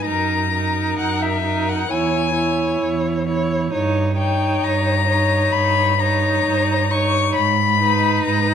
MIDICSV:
0, 0, Header, 1, 5, 480
1, 0, Start_track
1, 0, Tempo, 917431
1, 32, Time_signature, 4, 2, 24, 8
1, 1952, Tempo, 902256
1, 4510, End_track
2, 0, Start_track
2, 0, Title_t, "Violin"
2, 0, Program_c, 0, 40
2, 30, Note_on_c, 0, 82, 60
2, 506, Note_off_c, 0, 82, 0
2, 517, Note_on_c, 0, 78, 58
2, 637, Note_on_c, 0, 76, 54
2, 645, Note_off_c, 0, 78, 0
2, 882, Note_on_c, 0, 78, 55
2, 890, Note_off_c, 0, 76, 0
2, 993, Note_on_c, 0, 80, 60
2, 1001, Note_off_c, 0, 78, 0
2, 1474, Note_off_c, 0, 80, 0
2, 2189, Note_on_c, 0, 79, 56
2, 2437, Note_on_c, 0, 82, 65
2, 2445, Note_off_c, 0, 79, 0
2, 2904, Note_on_c, 0, 83, 67
2, 2912, Note_off_c, 0, 82, 0
2, 3155, Note_on_c, 0, 82, 65
2, 3163, Note_off_c, 0, 83, 0
2, 3644, Note_on_c, 0, 85, 68
2, 3652, Note_off_c, 0, 82, 0
2, 3875, Note_off_c, 0, 85, 0
2, 3878, Note_on_c, 0, 83, 70
2, 4343, Note_off_c, 0, 83, 0
2, 4354, Note_on_c, 0, 82, 71
2, 4510, Note_off_c, 0, 82, 0
2, 4510, End_track
3, 0, Start_track
3, 0, Title_t, "Violin"
3, 0, Program_c, 1, 40
3, 44, Note_on_c, 1, 70, 35
3, 276, Note_off_c, 1, 70, 0
3, 280, Note_on_c, 1, 70, 37
3, 750, Note_off_c, 1, 70, 0
3, 766, Note_on_c, 1, 70, 43
3, 996, Note_off_c, 1, 70, 0
3, 999, Note_on_c, 1, 73, 36
3, 1232, Note_off_c, 1, 73, 0
3, 1236, Note_on_c, 1, 73, 39
3, 1706, Note_off_c, 1, 73, 0
3, 1714, Note_on_c, 1, 73, 38
3, 1945, Note_off_c, 1, 73, 0
3, 1948, Note_on_c, 1, 73, 40
3, 2183, Note_off_c, 1, 73, 0
3, 2186, Note_on_c, 1, 73, 43
3, 2660, Note_off_c, 1, 73, 0
3, 2681, Note_on_c, 1, 73, 45
3, 3153, Note_off_c, 1, 73, 0
3, 3168, Note_on_c, 1, 73, 44
3, 3641, Note_off_c, 1, 73, 0
3, 3654, Note_on_c, 1, 73, 45
3, 3885, Note_off_c, 1, 73, 0
3, 4120, Note_on_c, 1, 71, 48
3, 4510, Note_off_c, 1, 71, 0
3, 4510, End_track
4, 0, Start_track
4, 0, Title_t, "Viola"
4, 0, Program_c, 2, 41
4, 23, Note_on_c, 2, 63, 38
4, 265, Note_off_c, 2, 63, 0
4, 277, Note_on_c, 2, 63, 38
4, 749, Note_off_c, 2, 63, 0
4, 757, Note_on_c, 2, 63, 37
4, 990, Note_off_c, 2, 63, 0
4, 993, Note_on_c, 2, 64, 37
4, 1229, Note_off_c, 2, 64, 0
4, 1232, Note_on_c, 2, 64, 39
4, 1704, Note_off_c, 2, 64, 0
4, 1718, Note_on_c, 2, 64, 36
4, 1950, Note_off_c, 2, 64, 0
4, 1954, Note_on_c, 2, 63, 42
4, 2191, Note_off_c, 2, 63, 0
4, 2194, Note_on_c, 2, 63, 43
4, 2664, Note_off_c, 2, 63, 0
4, 2672, Note_on_c, 2, 63, 39
4, 3148, Note_off_c, 2, 63, 0
4, 3153, Note_on_c, 2, 63, 44
4, 3634, Note_off_c, 2, 63, 0
4, 3646, Note_on_c, 2, 63, 41
4, 3881, Note_off_c, 2, 63, 0
4, 4122, Note_on_c, 2, 63, 48
4, 4510, Note_off_c, 2, 63, 0
4, 4510, End_track
5, 0, Start_track
5, 0, Title_t, "Cello"
5, 0, Program_c, 3, 42
5, 36, Note_on_c, 3, 42, 46
5, 462, Note_off_c, 3, 42, 0
5, 514, Note_on_c, 3, 42, 44
5, 938, Note_off_c, 3, 42, 0
5, 996, Note_on_c, 3, 40, 46
5, 1419, Note_off_c, 3, 40, 0
5, 1476, Note_on_c, 3, 40, 45
5, 1897, Note_off_c, 3, 40, 0
5, 1952, Note_on_c, 3, 43, 52
5, 2378, Note_off_c, 3, 43, 0
5, 2432, Note_on_c, 3, 43, 52
5, 2856, Note_off_c, 3, 43, 0
5, 2911, Note_on_c, 3, 43, 56
5, 3344, Note_off_c, 3, 43, 0
5, 3398, Note_on_c, 3, 43, 51
5, 3827, Note_off_c, 3, 43, 0
5, 3885, Note_on_c, 3, 44, 62
5, 4301, Note_off_c, 3, 44, 0
5, 4354, Note_on_c, 3, 44, 55
5, 4510, Note_off_c, 3, 44, 0
5, 4510, End_track
0, 0, End_of_file